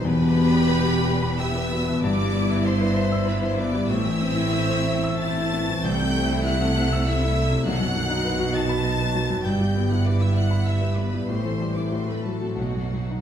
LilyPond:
<<
  \new Staff \with { instrumentName = "Violin section" } { \time 3/4 \key e \minor \tempo 4 = 96 b''2 e'''4 | d'''4 c'''4 b''16 c'''16 d'''8 | e'''2 a'''4 | g'''4 fis'''4 e'''4 |
fis'''4. a'''4. | g'''8. fis'''16 d'''16 e'''16 fis'''8 e'''8 b''8 | c'''8. d'''16 c'''16 b''16 a''8 fis''4 | }
  \new Staff \with { instrumentName = "Violin section" } { \time 3/4 \key e \minor b'2 e''4 | d''4 c''4 b'16 c''16 d''8 | e''2 a''4 | g''4 fis''4 e''4 |
fis''4. a''4. | g''8. fis''16 d''16 e''16 fis''8 e''8 b'8 | c''8. d''16 c''16 b'16 a'8 fis'4 | }
  \new Staff \with { instrumentName = "Grand piano" } { \time 3/4 \key e \minor e,16 b,16 b16 g'16 b'16 g'16 g''16 b''16 g''16 b'16 b16 b,16 | g,16 g16 b16 e'16 e''16 b'16 e''16 e'''16 e''16 e'16 b16 g16 | a,16 e16 c'16 e'16 e''16 c''16 e''16 e'''16 e''16 e'16 c'16 e16 | c,16 c16 a16 e'16 e''16 a'16 e''16 e'''16 e''16 e'16 a16 c16 |
b,,16 fis,16 fis16 dis'16 b'16 fis'16 dis''16 b''16 dis''16 b'16 fis16 fis,16 | g,16 g16 b16 e'16 b'16 e'16 e''16 b''16 e''16 b'16 b16 g16 | a,16 e16 g16 e'16 a,16 a16 fis16 fis'16 b,,16 fis,16 fis16 dis'16 | }
  \new Staff \with { instrumentName = "Viola section" } { \time 3/4 \key e \minor << { g'2 g'8 fis'8 | e'2 e'4 | e'2 e'4 | e'2 e'4 |
dis'16 fis'16 dis'16 fis'16 dis'16 fis'16 dis'16 fis'16 dis'16 fis'16 dis'16 fis'16 | e'16 g'16 e'16 g'16 e'16 g'16 e'16 g'16 e'16 g'16 e'16 g'16 | g'16 a'16 g'16 a'16 fis'16 a'16 fis'16 a'16 dis'16 fis'16 dis'16 fis'16 | } \\ { b2 b4 | b2 b4 | c'2 c'8 b8 | a2 a4 |
dis16 fis16 dis16 fis16 dis16 fis16 dis16 fis16 dis16 fis16 dis16 fis16 | g16 b16 g16 b16 g16 b16 g16 b16 g16 b16 g16 b16 | a16 c'16 a16 c'16 a16 c'16 a16 c'16 fis16 b16 fis16 b16 | } >> }
  \new Staff \with { instrumentName = "Cello section" } { \clef bass \time 3/4 \key e \minor e,2. | g,2. | a,2. | c2. |
b,2. | g,2. | a,2 b,4 | }
  \new Staff \with { instrumentName = "Double bass section" } { \clef bass \time 3/4 \key e \minor e,,2. | g,,2. | a,,2. | c,2. |
b,,2. | g,,2. | a,,2 b,,4 | }
>>